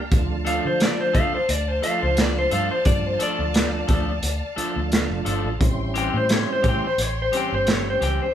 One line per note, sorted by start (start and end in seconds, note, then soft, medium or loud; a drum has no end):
0.10 0.59 D2 medium
0.10 1.38 F3 medium
0.10 1.38 A3 medium
0.10 1.39 D4 medium
0.10 1.39 F4 medium
0.10 5.57 D5 medium
0.10 5.57 F5 medium
0.10 5.57 A5 medium
0.10 kick loud
0.10 closed hi-hat medium
0.45 0.68 F3 medium
0.45 0.68 A3 medium
0.45 0.68 D4 medium
0.45 0.67 A4 medium
0.45 0.65 F5 medium
0.45 closed hi-hat medium
0.65 0.95 D3 medium
0.65 0.81 C5 medium
0.80 1.00 D5 medium
0.80 snare loud
0.80 closed hi-hat medium
1.01 1.15 C5 medium
1.13 1.31 D3 loud
1.13 1.37 F3 medium
1.13 1.37 A3 medium
1.13 1.37 D4 medium
1.13 1.36 A4 medium
1.13 1.33 F5 loud
1.13 kick medium
1.13 closed hi-hat medium
1.34 1.50 C5 medium
1.34 muted fingered electric bass stroke soft
1.49 1.79 D2 loud
1.49 1.68 D5 medium
1.49 closed hi-hat medium
1.68 1.83 C5 medium
1.81 2.78 F3 medium
1.81 2.06 F3 soft
1.81 2.78 A3 medium
1.81 2.06 A3 medium
1.81 2.05 D4 medium
1.81 2.79 D4 medium
1.81 2.79 F4 medium
1.81 2.05 A4 medium
1.81 2.02 F5 loud
1.81 closed hi-hat medium
2.02 2.46 C#2 medium
2.02 2.19 C5 medium
2.17 2.37 D5 medium
2.17 snare loud
2.17 closed hi-hat medium
2.38 2.52 C5 medium
2.51 2.69 G2 medium
2.51 2.75 F3 medium
2.51 2.74 A3 medium
2.51 2.74 D4 medium
2.51 2.74 A4 medium
2.51 2.71 F5 medium
2.51 closed hi-hat medium
2.71 2.86 C5 medium
2.84 3.16 G2 medium
2.84 4.13 F3 medium
2.84 4.13 A3 medium
2.84 4.13 D4 medium
2.84 4.13 F4 medium
2.84 3.06 D5 medium
2.84 kick loud
2.84 closed hi-hat medium
3.06 3.21 C5 medium
3.19 3.43 F3 medium
3.19 3.43 A3 medium
3.19 3.43 D4 medium
3.19 3.42 A4 medium
3.19 4.55 D5 loud
3.19 closed hi-hat medium
3.39 3.83 D2 medium
3.54 snare loud
3.54 closed hi-hat medium
3.87 4.19 D2 medium
3.87 4.12 F3 medium
3.87 4.11 A3 medium
3.87 4.11 D4 medium
3.87 4.11 A4 medium
3.87 kick medium
3.87 closed hi-hat medium
4.23 4.40 D2 medium
4.23 closed hi-hat medium
4.56 5.53 F3 medium
4.56 4.80 F3 medium
4.56 5.53 A3 medium
4.56 4.80 A3 medium
4.56 4.80 D4 medium
4.56 5.53 D4 medium
4.56 5.54 F4 medium
4.56 4.79 A4 medium
4.56 muted fingered electric bass stroke soft
4.56 closed hi-hat medium
4.76 5.07 D2 medium
4.92 snare loud
4.92 closed hi-hat medium
5.10 5.25 F1 medium
5.25 5.44 G1 medium
5.25 5.49 F3 medium
5.25 5.49 A3 medium
5.25 5.48 D4 medium
5.25 5.48 A4 medium
5.25 closed hi-hat medium
5.44 5.59 A1 medium
5.59 6.08 A1 medium
5.59 6.87 G3 medium
5.59 6.88 C4 medium
5.59 6.88 C#4 medium
5.59 6.88 E4 medium
5.59 8.33 C5 medium
5.59 8.34 G5 medium
5.59 8.32 C6 medium
5.59 kick loud
5.59 closed hi-hat medium
5.94 6.18 E3 medium
5.94 6.18 C4 medium
5.94 6.17 C#4 medium
5.94 6.17 G4 medium
5.94 6.15 G5 loud
5.94 closed hi-hat medium
6.14 6.44 A2 medium
6.14 6.31 C5 medium
6.29 6.50 C#5 medium
6.29 snare loud
6.29 closed hi-hat medium
6.53 6.66 C5 medium
6.63 6.81 A2 medium
6.63 6.87 E3 medium
6.63 6.86 C4 medium
6.63 6.86 C#4 medium
6.63 6.86 G4 medium
6.63 kick medium
6.63 closed hi-hat medium
6.69 6.85 G5 medium
6.82 muted fingered electric bass stroke soft
6.87 7.02 C5 medium
6.98 7.28 A1 medium
6.98 7.19 C#5 medium
6.98 closed hi-hat medium
7.22 7.35 C5 medium
7.31 7.56 E3 soft
7.31 8.28 G3 medium
7.31 8.28 C4 medium
7.31 7.55 C4 medium
7.31 8.28 C#4 medium
7.31 7.55 C#4 medium
7.31 7.55 G4 medium
7.31 8.29 G4 medium
7.31 closed hi-hat medium
7.37 7.54 G5 medium
7.52 7.96 G1 medium
7.52 7.71 C5 medium
7.67 7.88 C#5 medium
7.67 snare loud
7.67 closed hi-hat medium
7.90 8.03 C5 medium
8.01 8.18 C#2 medium
8.01 8.24 E3 soft
8.01 8.24 C4 medium
8.01 8.24 C#4 medium
8.01 8.23 G4 medium
8.01 8.21 G5 medium
8.01 closed hi-hat soft
8.22 8.34 C5 medium